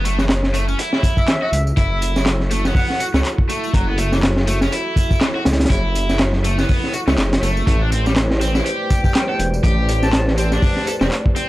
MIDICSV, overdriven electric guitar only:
0, 0, Header, 1, 2, 480
1, 0, Start_track
1, 0, Tempo, 491803
1, 1728, Time_signature, 4, 2, 24, 8
1, 11213, End_track
2, 0, Start_track
2, 0, Title_t, "Overdriven electric guitar"
2, 0, Program_c, 0, 29
2, 47, Note_on_c, 0, 57, 100
2, 171, Note_off_c, 0, 57, 0
2, 184, Note_on_c, 0, 52, 76
2, 228, Note_off_c, 0, 52, 0
2, 528, Note_on_c, 0, 57, 106
2, 626, Note_off_c, 0, 57, 0
2, 662, Note_on_c, 0, 61, 103
2, 756, Note_off_c, 0, 61, 0
2, 768, Note_on_c, 0, 64, 99
2, 1238, Note_off_c, 0, 64, 0
2, 1250, Note_on_c, 0, 52, 83
2, 1308, Note_off_c, 0, 52, 0
2, 1390, Note_on_c, 0, 66, 78
2, 1461, Note_off_c, 0, 66, 0
2, 1732, Note_on_c, 0, 64, 106
2, 2200, Note_off_c, 0, 64, 0
2, 2452, Note_on_c, 0, 57, 81
2, 2573, Note_off_c, 0, 57, 0
2, 2586, Note_on_c, 0, 59, 78
2, 2918, Note_off_c, 0, 59, 0
2, 2928, Note_on_c, 0, 66, 78
2, 2987, Note_off_c, 0, 66, 0
2, 3065, Note_on_c, 0, 57, 78
2, 3109, Note_off_c, 0, 57, 0
2, 3407, Note_on_c, 0, 57, 83
2, 3637, Note_off_c, 0, 57, 0
2, 3646, Note_on_c, 0, 54, 103
2, 3770, Note_off_c, 0, 54, 0
2, 3783, Note_on_c, 0, 59, 78
2, 3877, Note_off_c, 0, 59, 0
2, 3888, Note_on_c, 0, 57, 102
2, 4011, Note_off_c, 0, 57, 0
2, 4027, Note_on_c, 0, 52, 81
2, 4070, Note_off_c, 0, 52, 0
2, 4369, Note_on_c, 0, 57, 104
2, 4467, Note_off_c, 0, 57, 0
2, 4506, Note_on_c, 0, 61, 100
2, 4598, Note_off_c, 0, 61, 0
2, 4607, Note_on_c, 0, 64, 103
2, 5077, Note_off_c, 0, 64, 0
2, 5088, Note_on_c, 0, 52, 86
2, 5147, Note_off_c, 0, 52, 0
2, 5226, Note_on_c, 0, 66, 76
2, 5299, Note_off_c, 0, 66, 0
2, 5569, Note_on_c, 0, 64, 108
2, 6038, Note_off_c, 0, 64, 0
2, 6287, Note_on_c, 0, 57, 80
2, 6411, Note_off_c, 0, 57, 0
2, 6425, Note_on_c, 0, 59, 78
2, 6758, Note_off_c, 0, 59, 0
2, 6769, Note_on_c, 0, 66, 77
2, 6827, Note_off_c, 0, 66, 0
2, 6905, Note_on_c, 0, 57, 78
2, 6949, Note_off_c, 0, 57, 0
2, 7250, Note_on_c, 0, 57, 80
2, 7479, Note_off_c, 0, 57, 0
2, 7489, Note_on_c, 0, 57, 105
2, 7612, Note_off_c, 0, 57, 0
2, 7629, Note_on_c, 0, 62, 78
2, 7720, Note_off_c, 0, 62, 0
2, 7731, Note_on_c, 0, 60, 95
2, 7853, Note_off_c, 0, 60, 0
2, 7868, Note_on_c, 0, 55, 73
2, 7910, Note_off_c, 0, 55, 0
2, 8212, Note_on_c, 0, 60, 101
2, 8308, Note_off_c, 0, 60, 0
2, 8345, Note_on_c, 0, 64, 101
2, 8438, Note_off_c, 0, 64, 0
2, 8449, Note_on_c, 0, 67, 108
2, 8918, Note_off_c, 0, 67, 0
2, 8929, Note_on_c, 0, 55, 82
2, 8987, Note_off_c, 0, 55, 0
2, 9069, Note_on_c, 0, 69, 78
2, 9140, Note_off_c, 0, 69, 0
2, 9410, Note_on_c, 0, 67, 107
2, 9879, Note_off_c, 0, 67, 0
2, 10129, Note_on_c, 0, 60, 82
2, 10252, Note_off_c, 0, 60, 0
2, 10267, Note_on_c, 0, 62, 77
2, 10598, Note_off_c, 0, 62, 0
2, 10608, Note_on_c, 0, 69, 73
2, 10667, Note_off_c, 0, 69, 0
2, 10747, Note_on_c, 0, 60, 79
2, 10790, Note_off_c, 0, 60, 0
2, 11089, Note_on_c, 0, 60, 84
2, 11213, Note_off_c, 0, 60, 0
2, 11213, End_track
0, 0, End_of_file